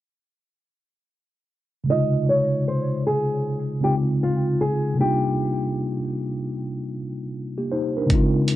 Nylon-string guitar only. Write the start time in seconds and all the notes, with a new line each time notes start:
1.90 D#5
2.29 C#5
2.68 C5
3.07 G#4
3.84 G4
4.23 F4
4.61 G#4
5.00 G4